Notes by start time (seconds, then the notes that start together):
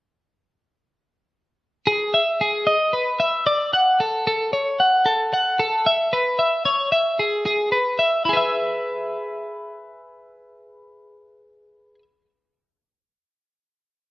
1.87 G#4
2.14 E5
2.41 G#4
2.67 D#5
2.93 B4
3.20 E5
3.47 D5
3.73 F#5
4.00 A4
4.27 A4
4.53 C#5
4.80 F#5
5.06 A4
5.34 F#5
5.60 A4
5.86 E5
6.13 B4
6.39 E5
6.65 C#5
6.92 E5
7.19 G#4
7.46 G#4
7.72 B4
7.99 E5
8.25 E4 G#4
8.33 B4 E5